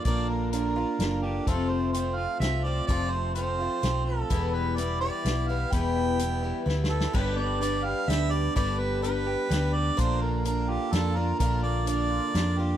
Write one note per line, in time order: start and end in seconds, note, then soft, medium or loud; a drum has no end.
0.00 1.00 D3 medium
0.00 0.52 D4 medium
0.00 0.76 F4 medium
0.05 0.84 A#1 medium
0.05 0.53 A#2 medium
0.05 0.52 D3 medium
0.05 0.53 A#3 medium
0.05 0.53 D4 medium
0.05 0.55 F4 medium
0.05 0.27 D5 medium
0.05 kick medium
0.05 closed hi-hat soft
0.29 1.47 A#3 medium
0.29 0.51 A#4 medium
0.52 0.77 D3 soft
0.52 0.77 A#3 soft
0.52 0.76 D4 soft
0.52 0.75 F4 medium
0.52 1.19 A#4 medium
0.52 closed hi-hat medium
0.76 1.01 A#3 soft
0.76 1.01 D4 soft
0.76 1.00 F4 soft
0.99 1.38 F#1 medium
0.99 1.47 D3 soft
0.99 1.48 A#3 soft
0.99 1.48 D4 soft
0.99 snare medium
0.99 closed hi-hat soft
1.03 1.49 F4 soft
1.22 1.47 D3 medium
1.22 1.48 G4 medium
1.47 2.25 F1 medium
1.47 1.95 F2 medium
1.47 1.95 C3 medium
1.47 1.94 F3 medium
1.47 1.95 A3 medium
1.47 1.95 C4 medium
1.47 1.95 F4 medium
1.47 1.71 A4 medium
1.47 kick medium
1.47 closed hi-hat medium
1.70 2.88 A3 medium
1.70 1.92 C5 medium
1.92 2.40 F3 soft
1.92 2.42 A3 soft
1.92 2.17 C5 medium
1.92 closed hi-hat medium
1.97 2.42 C4 soft
1.97 2.42 F4 medium
2.16 3.36 F4 medium
2.16 2.39 F5 medium
2.40 2.80 C2 medium
2.40 2.65 F3 soft
2.40 2.65 A3 soft
2.40 2.65 C4 soft
2.40 2.63 F4 medium
2.40 2.65 E5 medium
2.40 snare medium
2.40 closed hi-hat soft
2.63 2.88 F3 soft
2.63 2.89 A3 soft
2.63 2.89 C4 soft
2.63 2.89 F4 soft
2.63 2.86 D5 medium
2.87 3.67 F1 medium
2.87 3.36 F2 medium
2.87 3.37 C3 medium
2.87 3.34 F3 medium
2.87 3.34 A3 medium
2.87 3.36 C4 medium
2.87 3.36 F4 medium
2.87 3.12 D5 loud
2.87 kick medium
2.87 closed hi-hat soft
3.10 4.31 A3 medium
3.10 3.34 C5 medium
3.35 3.59 F3 medium
3.35 3.59 A3 medium
3.35 3.60 C4 soft
3.35 3.59 F4 medium
3.35 4.06 C5 medium
3.35 closed hi-hat medium
3.60 3.81 F3 soft
3.60 3.82 A3 soft
3.60 3.82 C4 soft
3.60 3.83 F4 soft
3.82 4.22 B1 medium
3.82 4.30 F3 medium
3.82 4.30 A3 soft
3.82 4.31 C4 medium
3.82 4.31 F4 soft
3.82 snare medium
3.82 closed hi-hat soft
4.05 4.31 F3 medium
4.05 4.55 A4 medium
4.30 5.09 E1 medium
4.30 4.78 E2 medium
4.30 4.78 B2 medium
4.30 4.76 E3 medium
4.30 4.78 G3 medium
4.30 4.78 B3 medium
4.30 4.78 E4 medium
4.30 kick medium
4.30 closed hi-hat soft
4.54 5.96 G3 medium
4.54 4.78 B4 medium
4.76 5.01 E3 medium
4.76 5.02 G3 medium
4.76 5.01 B3 medium
4.76 5.00 E4 medium
4.76 5.00 D5 medium
4.76 closed hi-hat medium
5.01 5.24 E3 soft
5.01 5.25 G3 soft
5.01 5.26 B3 soft
5.01 5.25 E4 soft
5.01 5.49 D5 medium
5.25 5.64 B1 medium
5.25 5.49 E3 soft
5.25 5.50 G3 soft
5.25 5.49 B3 soft
5.25 5.48 E4 soft
5.25 snare medium
5.25 closed hi-hat medium
5.48 5.72 E3 soft
5.48 5.72 G3 soft
5.48 5.72 B3 soft
5.48 5.73 E4 soft
5.48 5.73 F5 medium
5.72 6.51 E1 medium
5.72 6.20 E2 medium
5.72 6.20 B2 medium
5.72 6.19 E3 medium
5.72 6.19 G3 medium
5.72 6.20 B3 medium
5.72 6.20 E4 medium
5.72 6.67 G5 loud
5.72 kick medium
5.72 closed hi-hat medium
5.96 7.14 G3 medium
6.19 6.43 E3 soft
6.19 6.44 G3 medium
6.19 6.43 B3 medium
6.19 6.42 E4 medium
6.19 closed hi-hat medium
6.43 6.64 E3 soft
6.43 6.66 G3 soft
6.43 6.66 B3 soft
6.43 6.66 E4 soft
6.66 7.06 D2 medium
6.66 7.14 E3 medium
6.66 7.13 G3 soft
6.66 7.13 B3 medium
6.66 7.15 E4 medium
6.66 snare soft
6.84 snare medium
6.89 7.13 E3 medium
6.89 7.16 A4 medium
7.00 snare medium
7.13 7.92 G1 medium
7.13 7.61 G2 medium
7.13 7.61 D3 medium
7.13 7.60 G3 medium
7.13 7.60 B3 medium
7.13 7.62 D4 medium
7.13 7.62 G4 medium
7.13 7.39 B4 medium
7.13 kick medium
7.13 crash medium
7.36 8.55 B3 medium
7.36 7.60 D5 medium
7.61 8.06 G3 soft
7.61 8.07 B3 medium
7.61 8.09 D4 medium
7.61 8.08 G4 medium
7.61 7.85 D5 medium
7.61 closed hi-hat medium
7.84 9.03 G4 medium
7.84 8.10 F5 medium
8.08 8.47 D2 medium
8.08 8.55 G3 soft
8.08 8.55 B3 medium
8.08 8.56 D4 soft
8.08 8.55 G4 medium
8.08 8.33 E5 loud
8.08 snare medium
8.08 closed hi-hat soft
8.31 9.50 G3 medium
8.31 8.55 D5 medium
8.55 9.35 G1 medium
8.55 9.03 G2 medium
8.55 9.03 D3 medium
8.55 9.01 G3 medium
8.55 9.02 B3 medium
8.55 9.03 D4 medium
8.55 9.03 G4 medium
8.55 8.80 D5 loud
8.55 kick medium
8.55 closed hi-hat medium
8.78 9.97 B3 medium
8.78 9.02 B4 medium
9.02 9.48 G3 medium
9.02 9.49 B3 medium
9.02 9.50 D4 soft
9.02 9.50 G4 medium
9.02 9.76 B4 medium
9.02 closed hi-hat medium
9.27 9.98 G4 medium
9.49 9.90 D2 medium
9.49 9.97 G3 soft
9.49 9.97 B3 medium
9.49 9.97 D4 medium
9.49 9.98 G4 medium
9.49 snare medium
9.49 closed hi-hat medium
9.74 9.98 G3 medium
9.74 10.01 D5 medium
9.97 10.77 A#1 medium
9.97 10.45 A#2 medium
9.97 10.44 D3 medium
9.97 10.45 A#3 medium
9.97 10.45 D4 medium
9.97 10.47 F4 medium
9.97 10.23 C5 loud
9.97 kick medium
9.97 closed hi-hat medium
10.21 11.40 A#3 medium
10.21 10.45 A#4 medium
10.45 10.92 D3 medium
10.45 10.92 A#3 soft
10.45 10.93 D4 medium
10.45 10.94 F4 medium
10.45 10.71 A#4 medium
10.45 closed hi-hat medium
10.69 12.10 F4 medium
10.69 10.95 G4 medium
10.92 11.32 F2 medium
10.92 11.16 D3 soft
10.92 11.16 A#3 medium
10.92 11.16 D4 medium
10.92 11.15 F4 medium
10.92 11.17 A4 medium
10.92 snare medium
10.92 closed hi-hat soft
11.16 12.35 D3 medium
11.16 11.40 A#3 soft
11.16 11.40 D4 soft
11.16 11.40 F4 soft
11.16 11.38 A#4 medium
11.39 12.18 A#1 loud
11.39 11.87 A#2 medium
11.39 11.85 D3 medium
11.39 11.87 A#3 medium
11.39 11.87 D4 medium
11.39 11.88 F4 medium
11.39 11.61 A#4 loud
11.39 kick medium
11.39 closed hi-hat medium
11.63 12.77 A#3 medium
11.63 11.85 D5 medium
11.86 12.33 D3 medium
11.86 12.34 A#3 medium
11.86 12.34 D4 medium
11.86 12.36 F4 medium
11.86 12.60 D5 medium
11.86 closed hi-hat medium
12.10 12.77 F4 medium
12.34 12.74 F2 medium
12.34 12.58 D3 soft
12.34 12.59 A#3 soft
12.34 12.58 D4 soft
12.34 12.57 F4 medium
12.34 snare medium
12.34 closed hi-hat soft
12.59 12.77 D3 medium
12.59 12.77 A#3 soft
12.59 12.77 D4 soft
12.59 12.77 F4 soft
12.59 12.77 G4 medium